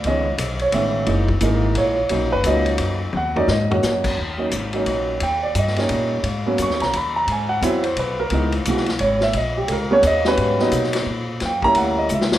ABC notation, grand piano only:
X:1
M:3/4
L:1/8
Q:"Swing" 1/4=174
K:D#phr
V:1 name="Grand piano"
d3 c e2 | z2 A2 c2- | c B d2 z2 | f =d ^d3 z |
z6 | =g =d ^d3 z | z2 c' a b a | g f e ^B =B A- |
A z3 c e | d =G [=A^A] c d B- | B2 z4 | =g a f d e z |]
V:2 name="Grand piano"
[D,G,B,C] z3 [D,G,B,C]2 | [E,G,A,D] z [E,G,A,D]3 z | [F,A,CD] z [F,A,CD]3 z | z [F,A,CD] z [F,A,CF]3 |
z [F,A,CD] z [F,A,CD]3 | z3 [=G,A,CD]3 | z [F,A,B,C]3 z2 | z2 [F,B,^B,E] z3 |
[E,G,B,D] z [E,G,B,F] z3 | z3 [=G,A,B,C] z [F,G,B,C]- | [F,=G,B,C] [F,A,B,D]3 z2 | z [=G,A,CE]3 z2 |]